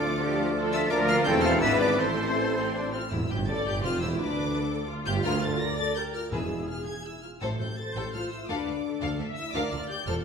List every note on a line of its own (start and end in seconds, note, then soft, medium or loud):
0.00 0.89 D2 loud
0.00 0.89 D2 medium
0.00 0.89 F3 loud
0.00 0.87 A3 medium
0.00 0.21 A3 medium
0.00 0.91 D4 loud
0.00 0.21 F4 medium
0.00 0.88 A4 medium
0.00 0.41 D5 loud
0.00 0.21 D5 medium
0.00 0.89 F5 medium
0.00 0.55 D6 loud
0.21 0.39 F3 medium
0.21 0.39 D4 medium
0.21 0.56 G4 loud
0.21 0.39 A4 medium
0.38 0.56 A3 medium
0.38 0.56 F4 medium
0.38 0.56 D5 medium
0.56 0.73 F3 medium
0.56 0.72 D4 loud
0.56 0.73 D4 medium
0.56 0.72 A4 medium
0.56 0.91 A4 loud
0.73 0.91 A3 medium
0.73 0.90 F4 loud
0.73 0.91 F4 loud
0.73 0.91 D5 medium
0.73 0.92 E5 loud
0.73 0.80 E6 loud
0.90 1.24 D2 loud
0.90 1.24 F3 loud
0.90 1.25 F3 loud
0.90 1.28 A#3 loud
0.90 1.24 D4 loud
0.90 1.25 D4 loud
0.90 1.24 F4 loud
0.90 1.24 A#4 loud
0.90 1.27 A#4 loud
0.90 1.08 D5 loud
0.90 1.28 F5 loud
0.90 0.98 D6 loud
1.08 1.25 F5 loud
1.08 1.16 F6 loud
1.25 1.64 E1 loud
1.25 1.62 E2 loud
1.25 1.62 E3 loud
1.25 1.61 A3 loud
1.25 1.62 A3 loud
1.25 1.63 C4 loud
1.25 1.60 E4 loud
1.25 1.62 A4 loud
1.25 1.63 A4 loud
1.25 1.63 C5 loud
1.25 1.43 G5 loud
1.25 1.33 G6 loud
1.43 1.61 F5 loud
1.43 1.51 F6 loud
1.61 2.00 G#1 loud
1.61 1.99 G#1 loud
1.61 1.98 E3 loud
1.61 1.99 B3 loud
1.61 2.00 B3 loud
1.61 2.00 D4 loud
1.61 1.98 E4 loud
1.61 1.99 B4 loud
1.61 1.98 D5 loud
1.61 1.80 E5 loud
1.61 1.80 E6 loud
1.80 1.86 D5 loud
1.80 1.99 D6 loud
1.98 2.92 A1 loud
1.98 2.92 A1 medium
1.98 2.91 E3 loud
1.98 2.34 A3 medium
1.98 2.92 C4 loud
1.98 2.34 C4 medium
1.98 2.92 E4 loud
1.98 2.93 A4 loud
1.98 2.91 C5 loud
1.98 2.91 C5 medium
1.98 2.94 C5 loud
1.98 2.93 C6 loud
2.38 2.45 A3 medium
2.57 2.75 C4 medium
2.75 2.94 D4 loud
2.93 3.01 C4 medium
2.93 3.02 F4 medium
2.93 3.10 F6 medium
3.12 3.29 E1 medium
3.12 3.29 E2 medium
3.12 3.62 A2 loud
3.12 3.19 E4 medium
3.12 3.30 E4 medium
3.12 3.30 E6 medium
3.30 3.50 G1 loud
3.30 3.48 G1 loud
3.30 3.48 G2 loud
3.30 3.37 G4 loud
3.30 3.48 G4 loud
3.30 3.48 G6 medium
3.48 3.65 A1 medium
3.48 3.66 A1 loud
3.48 3.66 A2 medium
3.48 3.66 A4 medium
3.48 3.81 D5 loud
3.48 3.66 A6 loud
3.65 3.83 G1 loud
3.65 3.85 G1 loud
3.65 3.84 G2 loud
3.65 3.84 G4 loud
3.65 3.84 G4 medium
3.65 3.83 G6 loud
3.83 4.03 F1 loud
3.83 4.02 F1 loud
3.83 4.01 F2 loud
3.83 4.01 F4 loud
3.83 4.02 F4 medium
3.83 4.19 C5 medium
3.83 4.01 F6 loud
4.00 4.21 E1 medium
4.00 4.19 E1 medium
4.00 4.19 E2 medium
4.00 4.19 E4 loud
4.00 4.20 E4 medium
4.00 4.18 E6 loud
4.19 4.89 D2 medium
4.19 4.90 D2 medium
4.19 4.90 D2 loud
4.19 4.90 D4 loud
4.19 4.90 D4 medium
4.19 4.54 B4 loud
4.19 4.88 D6 loud
4.54 4.89 A4 loud
4.90 5.60 F4 loud
5.06 5.23 G1 loud
5.06 5.23 G2 loud
5.06 5.15 G4 medium
5.06 5.23 G4 loud
5.06 5.13 G6 loud
5.24 5.54 D2 loud
5.24 5.32 F4 loud
5.24 5.41 F4 loud
5.24 5.41 A#4 loud
5.24 5.41 F6 loud
5.41 5.59 A4 loud
5.41 5.59 A6 loud
5.59 5.77 A#4 loud
5.59 5.95 D5 loud
5.59 5.77 A#6 loud
5.77 5.95 A4 loud
5.77 5.95 A6 loud
5.96 6.13 G4 medium
5.96 6.32 A#4 medium
5.96 6.03 G6 loud
6.14 6.31 F4 medium
6.14 6.31 F6 medium
6.32 6.62 E1 medium
6.32 6.63 E1 medium
6.32 6.83 E2 loud
6.32 6.62 E2 medium
6.32 6.68 E4 medium
6.32 7.24 G#4 medium
6.32 6.49 G#4 medium
6.32 6.49 B4 medium
6.32 6.68 E6 medium
6.68 6.87 F4 medium
6.68 6.86 F6 medium
6.86 7.05 G#4 medium
6.86 7.04 G#6 medium
7.05 7.24 E4 medium
7.05 7.23 E6 medium
7.23 7.42 F4 medium
7.23 7.30 F6 medium
7.41 7.49 A1 medium
7.41 7.50 A1 medium
7.41 7.92 A2 loud
7.41 7.49 A2 medium
7.41 7.60 E4 medium
7.41 7.59 A4 medium
7.41 7.59 C5 medium
7.41 7.48 E6 medium
7.59 7.68 A1 soft
7.59 7.68 A1 medium
7.59 7.67 A2 medium
7.59 7.78 G4 medium
7.59 7.68 A4 medium
7.59 7.68 C5 medium
7.59 7.77 G6 medium
7.77 7.96 A4 medium
7.77 8.12 C5 medium
7.77 7.96 A6 medium
7.95 8.03 A1 medium
7.95 8.04 A1 medium
7.95 8.03 A2 medium
7.95 8.04 G4 medium
7.95 8.13 A4 medium
7.95 8.13 C5 medium
7.95 8.13 G6 medium
8.13 8.21 A1 medium
8.13 8.21 A2 medium
8.13 8.32 F4 medium
8.13 8.21 A4 medium
8.13 8.49 C5 medium
8.13 8.21 C5 medium
8.13 8.31 F6 loud
8.30 8.49 E4 medium
8.30 8.48 E6 medium
8.48 8.56 D2 medium
8.48 9.18 D4 medium
8.48 8.65 A4 medium
8.48 8.83 B4 medium
8.48 8.65 F5 medium
8.48 9.19 D6 medium
8.67 8.74 D2 medium
8.67 8.74 A4 medium
8.67 8.74 F5 medium
8.84 9.18 A4 medium
9.01 9.09 D2 medium
9.01 9.09 D2 loud
9.01 9.18 A4 medium
9.01 9.18 F5 loud
9.18 9.26 D2 medium
9.18 9.26 A4 medium
9.18 9.53 E5 medium
9.18 9.26 F5 medium
9.36 9.53 E4 medium
9.36 9.53 E6 loud
9.53 9.61 D2 medium
9.53 9.61 D2 loud
9.53 9.62 D4 loud
9.53 9.70 A#4 medium
9.53 10.24 D5 medium
9.53 9.70 F5 loud
9.53 9.71 D6 loud
9.71 9.79 D2 medium
9.71 9.80 F4 medium
9.71 9.79 A#4 medium
9.71 9.79 F5 medium
9.71 9.89 F6 loud
9.89 10.07 G4 medium
9.89 10.07 G6 loud
10.07 10.14 E1 medium
10.07 10.15 E1 medium
10.07 10.15 E2 medium
10.07 10.24 F4 medium
10.07 10.24 A4 medium
10.07 10.24 C5 medium
10.07 10.14 F6 loud